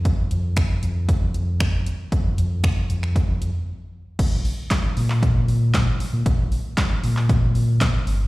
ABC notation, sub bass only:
X:1
M:4/4
L:1/16
Q:1/4=116
K:Fmix
V:1 name="Sub bass" clef=bass
F,,2 F,,4 F,,8- F,,2 | F,,2 F,,4 F,,6 z4 | B,,,2 z4 B,,8- B,, B,, | B,,,2 z4 B,,8 G,,,2 |]